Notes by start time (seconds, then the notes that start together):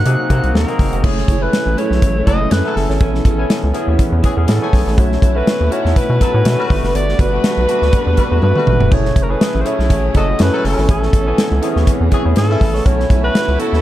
Already playing: C3 F#3 A#3 C4 D#4 F#4 F#5
0.05 C3 A#3 C4 D#4 G#4, muted clean electric guitar stroke, closed hi-hat
0.19 muted clean electric guitar stroke
0.30 C3 A#3 C4 D#4 F#4 A#4 C5 F#5, kick, closed hi-hat
0.44 C2 A#4 C5 F#5, closed hi-hat
0.54 D#2 A#4 C5 F#5, snare
0.68 A#3 C4 D#4 G#4, muted clean electric guitar stroke, closed hi-hat
0.79 F#1, muted clean electric guitar stroke, kick, snare, open hi-hat
0.93 F1 A#4 C5 F#5, closed hi-hat
1.03 F#1 F#3 A3 C#4 E4 G#4 A4 C#5, kick, crash
1.18 snare
1.28 F#1 E4 A4 C#5, kick, closed hi-hat
1.41 A3 C#4 E4 A4 B4 C#5
1.53 muted clean electric guitar stroke, snare, closed hi-hat
1.66 A1, muted clean electric guitar stroke
1.77 G#3 C#4 E4 A4 B4 C#5, closed hi-hat
1.83 A3
1.91 B1 E4 A4 C#5, snare
2.02 A1, kick, closed hi-hat
2.16 muted clean electric guitar stroke
2.26 F#1 F#3 E4 A4 C#5 D#5, kick, closed hi-hat
2.40 A3 C#4 E4 G#4, muted clean electric guitar stroke
2.51 F#2 E4 A4 B4 C#5, snare, closed hi-hat
2.64 F#3 A3 C#4 E4 A4 G#5, muted clean electric guitar stroke
2.76 F#1 A4, snare, open hi-hat
2.89 G#1 E4 A4 C#5, snare
3.00 A1 E3 A3 B3 C#4 E4 G#4 A4 C#5 G#5, kick, closed hi-hat
3.15 snare
3.25 A1 E4 G#4 C#5, kick, closed hi-hat
3.38 B3 C#4 E4 G#4 C#5 G#5
3.49 muted clean electric guitar stroke, snare, closed hi-hat
3.62 C#2, muted clean electric guitar stroke
3.74 B3 C#4 E4 G#4 C#5, closed hi-hat
3.87 D#2 E4 G#4 C#5
3.99 kick, closed hi-hat
4.12 E2, muted clean electric guitar stroke
4.23 E3 C#4 E4 G#4 C#5, kick, closed hi-hat
4.36 E2 B3 C#4 E4 G#4, muted clean electric guitar stroke
4.47 A2 E4 G#4 A4 C#5, snare, closed hi-hat
4.61 A3 B3 C#4 E4 C#5 G#5, muted clean electric guitar stroke
4.73 B1, kick, snare, open hi-hat
4.85 A1 E4 G#4 C#5, snare
4.97 B1 A3 B3 C#4 E4 F#4 A4 C#5 E5, kick, closed hi-hat
5.12 snare
5.22 B1 F#4 A4 E5, kick, closed hi-hat
5.35 A3 C#4 E4 F#4 A4 B4 E5
5.47 muted clean electric guitar stroke, snare, closed hi-hat
5.60 D#2, muted clean electric guitar stroke
5.71 A3 C#4 D#4 F#4 A4 C#5 E5, closed hi-hat
5.78 E4
5.84 E2 F#4 A4 E5, snare
5.96 B2 B4, kick, closed hi-hat
6.09 B2, muted clean electric guitar stroke
6.20 F#3 E4 F#4 A4 E5, kick, closed hi-hat
6.33 A2 A3 C#4 E4 F#4, muted clean electric guitar stroke
6.45 B2 F#4 A4 E5, snare, closed hi-hat
6.58 G3 A3 C#4 E4 F#4 B4, muted clean electric guitar stroke
6.69 G1 G3 A3 B3 D4 F4 F#4 B4, muted clean electric guitar stroke, kick, snare, open hi-hat
6.76 F#4
6.83 F#1 F#4 B4 D5, snare
6.94 G1 F#4 B4 D5, closed hi-hat
7.09 snare
7.19 G1 F#4 B4 D5, kick, closed hi-hat
7.32 A3 B3 D4 F#4 B4 D5
7.43 muted clean electric guitar stroke, snare, closed hi-hat
7.56 B1, muted clean electric guitar stroke
7.68 A3 A#3 D4 F#4 B4 D5, closed hi-hat
7.74 B3
7.81 D2 F#4 B4 D5, snare
7.93 kick, closed hi-hat
8.06 E2, muted clean electric guitar stroke
8.17 G3 F#4 B4 D5, kick, closed hi-hat
8.30 E2 A3 B3 D4 F#4, muted clean electric guitar stroke
8.41 G2 F#4 B4 D5, high tom
8.55 G3 A3 B3 D4 F#4 B4, muted clean electric guitar stroke, mid tom
8.66 A1, muted clean electric guitar stroke, mid tom
8.80 E1 F#4 B4 D5, floor tom
8.91 F#1 F#3 A3 C#4 E4 G#4 A4 C#5, kick, splash
9.05 snare
9.16 F#1 E4 A4 C#5, kick, closed hi-hat
9.23 A#4
9.29 A3 C#4 E4 G#4 A4 B4 C#5
9.40 muted clean electric guitar stroke, snare, closed hi-hat
9.54 A1, muted clean electric guitar stroke
9.60 C5
9.65 A3 C#4 E4 G#4 A4 C#5, closed hi-hat
9.78 B1 E4 A4 C#5, snare
9.90 A1, kick, closed hi-hat
10.03 muted clean electric guitar stroke
10.14 F#1 F#3 E4 A4 C#5 D#5, kick, closed hi-hat
10.27 A3 C#4 E4 F#4, muted clean electric guitar stroke
10.39 F#2 E4 A4 B4 C#5, snare, closed hi-hat
10.52 F#3 A3 C#4 E4 A4 G#5, muted clean electric guitar stroke
10.63 F#1 A4, muted clean electric guitar stroke, snare, open hi-hat
10.77 G#1 E4 A4 C#5, snare
10.88 A1 E3 A3 B3 C#4 E4 G#4 A4 C#5 G#5, kick, closed hi-hat
11.03 snare
11.13 A1 E4 G#4 C#5, kick, closed hi-hat
11.26 B3 C#4 E4 G#4 C#5 G#5
11.37 muted clean electric guitar stroke, snare, closed hi-hat
11.51 C#2, muted clean electric guitar stroke
11.62 B3 C4 E4 G#4 C#5, closed hi-hat
11.68 C#4
11.75 D#2 E4 G#4 C#5, snare
11.87 kick, closed hi-hat
12.00 E2, muted clean electric guitar stroke
12.11 E3 C#4 E4 G#4 C#5, kick, closed hi-hat
12.25 E2 B3 C#4 E4 G#4, muted clean electric guitar stroke
12.35 G#2 E4 G#4 A4 C#5, snare, closed hi-hat
12.49 C#3 A3 B3 C#4 E4 G#5, muted clean electric guitar stroke
12.61 A1, muted clean electric guitar stroke, kick, snare, open hi-hat
12.74 E4 G#4 C#5, snare
12.85 B1 A3 B3 C#4 E4 F#4 A4 C#5, kick, closed hi-hat
13.00 snare
13.10 B1 B3 E4 A4, kick, closed hi-hat
13.23 A3 B3 C#4 E4 F#4 A4 B4
13.34 muted clean electric guitar stroke, snare, closed hi-hat
13.48 C#2, muted clean electric guitar stroke
13.59 A3 B3 C#4 E4 F#4 A4, closed hi-hat
13.72 D#2 B3 E4 A4, snare